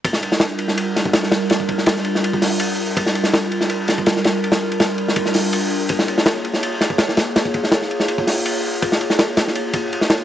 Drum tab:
RD |x-x-x-x-x-x-x-x-|x-x-x-x-x---x---|x-x-x-x-x-x-x-x-|xx-xx-x-x---x---|
HH |----------------|----------o-----|----------------|----------o-----|
SD |-o-oo--o--o-ooo-|o--ooo-o--o-----|-o-oo--o--o-ooo-|-o--o--o-oo-----|
BD |o----------o----|-oo------o------|o----------o----|--------o-------|

RD |x-x-x-x-x-x-x-x-|x-x-x-x-x---x---|x-x-x-x-x-x-x-x-|
HH |----------------|----------o-----|----------------|
SD |-o-oo--o--o-ooo-|o--ooo-o--o-----|-o-oo-oo-----oo-|
BD |o----------o----|-oo------o------|o---------o-----|